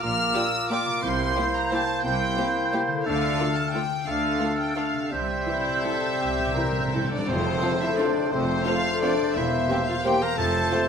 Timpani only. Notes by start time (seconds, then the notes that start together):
1.03 C3
5.11 C3
5.27 C3
5.35 C3
5.43 C3
5.50 C3
5.59 C3
5.68 C3
5.76 C3
5.84 C3
5.92 C3
6.00 C3
6.08 C3
6.15 C3
6.23 C3
6.30 C3
6.39 C3
6.47 C3
6.55 C3
6.64 C3
6.71 C3
6.79 C3
6.87 C3
6.96 C3
7.03 C3
7.11 C3
7.18 C3
7.29 F2
10.39 F2